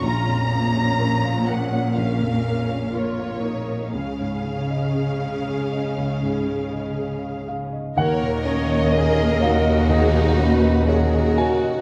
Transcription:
<<
  \new Staff \with { instrumentName = "Violin section" } { \time 4/4 \key ees \minor \tempo 4 = 61 bes''4. ges''8 f''4 des''4 | f''2.~ f''8 r8 | des''8 ees''4. bes'8 ces''8 bes'4 | }
  \new Staff \with { instrumentName = "Grand piano" } { \time 4/4 \key ees \minor << { r1 | r2. r8 f''8 | ges''4. f''8 ees''4. aes''8 | } \\ { bes,,16 f,16 bes16 des''16 bes'16 f''16 bes'16 des''16 bes,,16 f,16 bes16 des''16 bes'16 f''16 bes'16 des''16 | des,16 aes,16 aes16 ees''16 aes'16 f''16 aes'16 ees''16 des,16 aes,16 aes16 ees''16 aes'16 f''16 aes'16 ees''16 | ees,16 bes,16 des'16 ees''16 des''16 ees''16 des''16 ees''16 ees,16 bes,16 des'16 ees''16 des''16 ees''16 des''16 ees''16 | } >> }
  \new Staff \with { instrumentName = "Viola section" } { \time 4/4 \key ees \minor << { f'8 f4. bes'4 bes'4 | aes'1 | bes'8 des''8 bes'4 aes'8 ges'8 aes'8 ges'8 | } \\ { des'2 des'4 f'8 ees'8 | des'1 | r1 | } >> }
  \new Staff \with { instrumentName = "Violin section" } { \time 4/4 \key ees \minor << { r1 | r1 | bes'4 aes'8 ges'4. ges'4 | } \\ { r1 | r1 | bes2 ees'4 ges'4 | } >> }
  \new Staff \with { instrumentName = "Cello section" } { \clef bass \time 4/4 \key ees \minor bes,1 | des1 | ees,1 | }
  \new Staff \with { instrumentName = "Double bass section" } { \clef bass \time 4/4 \key ees \minor r1 | r1 | ees,1 | }
>>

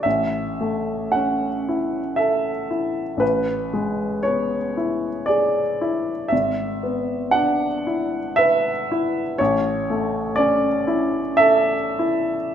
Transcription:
\new Staff \with { instrumentName = "Upright piano" } { \time 3/4 \key a \major \tempo 4 = 58 << { e''4 fis''4 e''4 | b'4 cis''4 d''4 | e''4 fis''4 e''4 | cis''4 d''4 e''4 | } \\ { a,,8 a8 cis'8 e'8 a'8 e'8 | a,,8 gis8 b8 e'8 gis'8 e'8 | gis,,8 b8 d'8 e'8 b'8 e'8 | a,,8 a8 cis'8 e'8 a'8 e'8 | } >> }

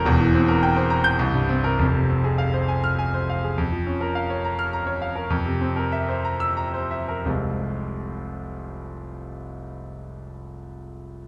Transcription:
\new Staff \with { instrumentName = "Grand piano" } { \time 3/4 \key f \minor \tempo 4 = 99 << { r4. r16 g'''16 r8. bes'16 | r4. r16 f'''8 r8. | r4. r16 f'''8 r8. | r4. r16 e'''8 r8. |
<f,, c, f aes c' f'>2.~ | <f,, c, f aes c' f'>2. | } \\ { <e,, e,>16 e16 c'16 bes'16 g''16 c''16 bes''8 c,16 g,16 c'8 | <f,, f,>16 c16 c'16 aes'16 f''16 c''16 aes''8 aes''16 c''16 f''16 aes'16 | f,16 f16 des'16 bes'16 f''16 des''16 bes''8 bes''16 des''16 f''16 bes'16 | f,16 c16 c'16 bes'16 e''16 c''16 bes''8 bes''16 c''16 e''16 bes'16 |
r2. | r2. | } >> }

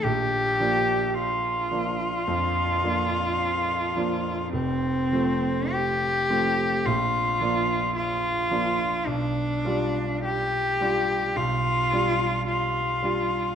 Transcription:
<<
  \new Staff \with { instrumentName = "Cello" } { \time 4/4 \key bes \lydian \tempo 4 = 54 g'4 f'2. | c'4 g'4 f'4 f'4 | d'4 g'4 f'4 f'4 | }
  \new Staff \with { instrumentName = "Grand piano" } { \time 4/4 \key bes \lydian bes,,8 <f bes d'>4 <f bes d'>8 f,8 <f bes d'>4 <f bes d'>8 | f,,8 <f a c'>4 <f a c'>8 bes,,8 <f bes d'>4 <f bes d'>8 | b,,8 <g d' f'>4 <g d' f'>8 b,,8 <g d' f'>4 <g d' f'>8 | }
>>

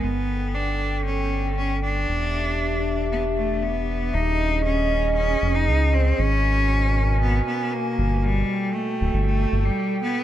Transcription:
<<
  \new Staff \with { instrumentName = "Ambient pad" } { \time 4/4 \key ees \mixolydian \tempo 4 = 117 << { <a' g''>1 | <g' e''>1 | <aes' ees''>1 | <bes' aes''>1 |
<a' g''>1 | } \\ { ces'1 | d'1 | des'1 | ces1~ |
ces1 | } >> }
  \new Staff \with { instrumentName = "Cello" } { \time 4/4 \key ees \mixolydian b4 d'4 des'4 des'8 d'8~ | d'2 b8 a8 b4 | ees'4 des'4 des'8. ees'8. c'8 | des'2 ces'8 ces'8 bes4 |
g4 a4 a8. g8. b8 | }
  \new Staff \with { instrumentName = "Analog synth bass" } { \clef bass \time 4/4 \key ees \mixolydian g,,1 | e,,1 | ees,,2~ ees,,8 f,,8 des,4 | aes,,2~ aes,,8 r4 g,,8~ |
g,,8 r4 d,,16 g,,8. g,,16 r4 r16 | }
>>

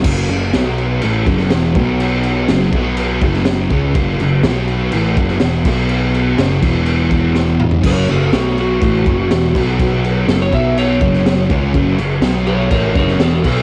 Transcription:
<<
  \new Staff \with { instrumentName = "Electric slide guitar" } { \time 4/4 \key b \major \tempo 4 = 123 r1 | r1 | r1 | r1 |
<ais' cis''>8 <fis' a'>8 <a fis'>8 fis'2~ fis'8~ | fis'8 r8 a'16 cis''16 e''8 cis''2~ | cis''4 r8 <a' cis''>8 <ais' cis''>8 <ais' cis''>8 <fis' a'>8 <fis' a'>8 | }
  \new Staff \with { instrumentName = "Distorted electric guitar" } { \clef bass \time 4/4 \key b \major <fis, cis fis>8 <fis, cis>8 <b, fis b>4 <a, e a>8 <fis, cis fis>8 <e, b, e>8 <b, fis b>8~ | <b, fis b>4 <fis, cis fis>8 <b, fis b>4 <fis, cis fis>4 <cis gis cis'>8 | <fis, cis fis>8 <fis, cis>8 <b, fis b>4 <a, e a>8 <fis, cis fis>8 <e, b, e>8 <b, fis b>8~ | <b, fis b>4 <fis, cis fis>8 <e, b, e>2~ <e, b, e>8 |
<fis, cis fis>8 <fis, cis>8 <b, fis b>4 <a, e a>8 <fis, cis fis>8 <e, b, e>8 <b, fis b>8~ | <b, fis b>4 <fis, cis fis>8 <b, fis b>4 <fis, cis fis>4 <cis gis cis'>8 | <fis, cis fis>8 <fis, cis>8 <b, fis b>4 <a, e a>8 <fis, cis fis>8 <e, b, e>8 <b, fis b>8 | }
  \new Staff \with { instrumentName = "Picked electric bass" } { \clef bass \time 4/4 \key b \major fis,,8 fis,,8 b,,4 a,,8 fis,,8 e,,8 b,,8~ | b,,4 fis,,8 b,,4 fis,,4 cis,8 | fis,,8 fis,,8 b,,4 a,,8 fis,,8 e,,8 b,,8~ | b,,4 fis,,8 e,,2~ e,,8 |
fis,,8 fis,,8 b,,4 a,,8 fis,,8 e,,8 b,,8~ | b,,4 fis,,8 b,,4 fis,,4 cis,8 | fis,,8 fis,,8 b,,4 a,,8 fis,,8 e,,8 b,,8 | }
  \new DrumStaff \with { instrumentName = "Drums" } \drummode { \time 4/4 <cymc bd>8 cymc8 <cymc sn>8 cymc8 cymc8 <cymc bd>16 sn16 <cymc sn>8 <cymc bd>8 | cymc8 cymc8 <cymc sn>8 <cymc bd>8 cymc8 <cymc bd>16 sn16 <cymc sn>8 <cymc bd>8 | <cymc bd>8 cymc8 <cymc sn>8 cymc8 cymc8 <cymc bd>16 sn16 <cymc sn>8 <cymc bd>8 | cymc8 cymc8 <cymc sn>8 <cymc bd>8 cymc8 <cymc bd>8 sn8 toml16 tomfh16 |
<cymc bd>8 cymc8 <cymc sn>8 cymc8 <cymc bd>8 <cymc bd>8 <cymc sn>8 <cymc bd>8 | <cymc bd>8 cymc8 <cymc sn>8 <cymc bd>8 cymc8 <cymc bd>16 sn16 <cymc sn>8 <cymc bd>8 | <cymc bd>8 cymc8 <cymc sn>8 cymc8 <cymc bd>8 <cymc bd>16 sn16 <cymc sn>8 <cymc bd>8 | }
>>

